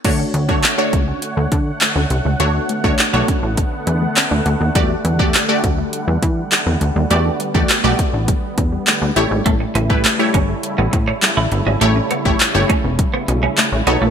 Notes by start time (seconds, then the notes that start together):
0.04 D2 D3 A3 D4 F#4 C#5 F#5, kick, closed hi-hat, crash
0.19 C#4
0.34 D2, closed hi-hat
0.49 A3 D4 F#4 C#5, kick
0.63 C#4, clap, closed hi-hat
0.78 A3 D4 F#4 C#5
0.93 C#2 A3, kick, closed hi-hat
1.08 C#4
1.22 closed hi-hat
1.37 D2 A3
1.52 D3, kick, closed hi-hat
1.81 A3, clap, closed hi-hat
1.96 D2 C#4
2.10 C2, closed hi-hat
2.25 C#2 A3
2.40 D2 A3 B3 D4 F#4 C#5, closed hi-hat
2.55 D4
2.69 A3, closed hi-hat
2.84 D2 A3 D4 F#4 C#5, kick
2.99 clap, closed hi-hat
3.13 B1 A3 D4 F#4 C#5
3.28 C#4, kick, closed hi-hat
3.43 A1 D4
3.57 A3, kick, closed hi-hat
3.87 E2 D4, closed hi-hat
4.02 A3
4.16 C#4, clap, closed hi-hat
4.31 D2 D4
4.46 D2, closed hi-hat
4.61 D#2
4.75 E2 G3 A3 F#4 G4 D5, kick, closed hi-hat
4.90 A3
5.05 E2, closed hi-hat
5.19 G3 A3 F#4 G4 D5, kick
5.34 A3, clap, closed hi-hat
5.49 A3 F#4 G4 D5
5.64 D2 G3, kick, closed hi-hat
5.78 A3
5.93 closed hi-hat
6.08 E2 G3
6.23 E3, kick, closed hi-hat
6.52 G3, clap, closed hi-hat
6.66 E2 A3
6.81 D2, closed hi-hat
6.96 D#2 G3
7.10 E2 A3 B3 F#4 G4 D5, closed hi-hat
7.25 D4
7.40 G3, closed hi-hat
7.54 E2 A3 F#4 G4 D5, kick
7.69 clap, closed hi-hat
7.84 B1 A3 F#4 G4 D5
7.99 A3, kick, closed hi-hat
8.13 A1 D4
8.28 G3, kick, closed hi-hat
8.58 E2 D4, kick, closed hi-hat
8.72 G3
8.87 A3, clap, closed hi-hat
9.02 D2 D4
9.16 A1 C#3 A3 E4 G4 C#5, closed hi-hat
9.31 G#1
9.46 A1 G3 A3, kick, closed hi-hat
9.60 A3, muted clean electric guitar stroke
9.75 A1 B3, closed hi-hat
9.90 G3 A3 E4 G4 B4, kick
10.05 A3, clap, closed hi-hat
10.19 A3 E4 G4 C#5
10.34 G1 G3 C#4, kick, closed hi-hat
10.49 A3
10.63 closed hi-hat
10.78 A1 G3 B3
10.93 A2, muted clean electric guitar stroke, kick, closed hi-hat
11.08 C#4
11.22 G3, clap, closed hi-hat
11.37 A1 A3 E4
11.52 G1, muted clean electric guitar stroke, closed hi-hat
11.66 G#1 G3 C#4
11.81 A1 A3 E4 G4 C#5, closed hi-hat
11.96 C#4, muted clean electric guitar stroke
12.11 G3 B3, closed hi-hat
12.25 A1 A3 E4 G4 C#5, kick
12.40 clap, closed hi-hat
12.54 G1 A3 E4 G4 C#5
12.69 A3 C#4, kick, closed hi-hat
12.84 E1 C#4
12.99 G3, kick, closed hi-hat
13.14 B3
13.28 B1 C#4, muted clean electric guitar stroke, closed hi-hat
13.43 G3 C#4
13.58 A3, muted clean electric guitar stroke, clap, closed hi-hat
13.72 A1 C#4
13.87 B1 A3 B3 D#4 A4 C#5, closed hi-hat
14.02 A#1 A3